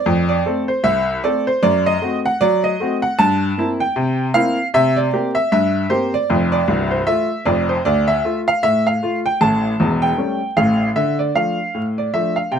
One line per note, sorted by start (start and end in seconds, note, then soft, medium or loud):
0.00 0.22 D5 loud
0.06 0.40 F2 loud
0.29 0.61 D5 medium
0.46 0.67 A3 medium
0.46 0.68 C4 medium
0.46 0.68 A4 medium
0.68 0.85 C5 medium
0.84 1.17 C2 medium
0.84 1.21 E5 loud
1.24 1.45 A3 medium
1.24 1.46 C4 medium
1.24 1.46 A4 medium
1.24 1.47 D5 loud
1.47 1.63 C5 medium
1.63 1.96 F#2 medium
1.63 1.86 D5 loud
1.86 2.17 D#5 loud
2.02 2.23 A3 medium
2.02 2.23 C4 medium
2.02 2.24 F#4 medium
2.25 2.41 F#5 loud
2.41 2.74 F#3 medium
2.41 2.64 D5 loud
2.64 2.95 D#5 medium
2.80 3.01 A3 medium
2.80 3.02 C4 medium
2.80 3.02 F#4 medium
3.02 3.18 F#5 loud
3.19 3.52 G2 medium
3.19 3.68 A5 loud
3.58 3.79 A#3 soft
3.58 3.80 C4 soft
3.58 3.80 E4 medium
3.80 4.24 G5 loud
3.96 4.29 C3 medium
4.34 4.56 A#3 medium
4.34 4.56 C4 medium
4.34 4.56 E4 medium
4.34 4.66 F5 loud
4.74 5.07 C3 medium
4.74 4.97 E5 loud
4.96 5.28 D5 medium
5.13 5.34 A#3 medium
5.13 5.34 C4 medium
5.13 5.35 G4 medium
5.35 5.51 E5 loud
5.52 5.85 G2 medium
5.52 5.89 E5 loud
5.90 6.11 A#3 medium
5.90 6.12 C4 medium
5.90 6.12 G4 medium
5.90 6.13 C5 loud
6.14 6.45 D5 loud
6.30 6.61 F1 medium
6.30 6.61 F2 medium
6.52 6.89 D5 loud
6.68 6.99 C1 medium
6.68 6.99 C2 medium
6.91 7.07 C5 medium
7.07 7.28 A3 medium
7.07 7.29 F4 medium
7.07 7.44 E5 loud
7.45 7.77 F1 medium
7.45 7.77 F2 medium
7.45 7.69 D5 medium
7.69 7.85 C5 medium
7.85 8.18 D2 medium
7.85 8.08 D5 loud
8.08 8.39 E5 loud
8.25 8.46 A3 soft
8.25 8.46 F4 medium
8.48 8.63 F5 loud
8.63 8.96 A2 medium
8.63 8.86 E5 loud
8.87 9.17 F5 medium
9.03 9.24 A3 medium
9.03 9.24 F4 medium
9.26 9.41 G5 medium
9.41 9.72 A1 medium
9.41 9.72 A2 medium
9.41 9.90 A5 loud
9.80 10.11 E1 medium
9.80 10.11 E2 medium
10.02 10.54 G5 loud
10.18 10.40 G3 soft
10.18 10.39 A3 soft
10.18 10.40 C#4 soft
10.57 10.88 A1 medium
10.57 10.88 A2 medium
10.57 10.88 F5 loud
10.96 11.29 D3 medium
10.96 11.19 E5 medium
11.19 11.35 D5 medium
11.35 11.57 F3 soft
11.35 11.57 A3 soft
11.35 11.58 D4 medium
11.35 11.85 F5 medium
11.75 12.08 A2 medium
11.98 12.14 D5 medium
12.14 12.35 F3 soft
12.14 12.36 A3 soft
12.14 12.36 D4 medium
12.14 12.37 E5 medium
12.36 12.52 F5 medium
12.52 12.59 C3 medium
12.52 12.59 G5 medium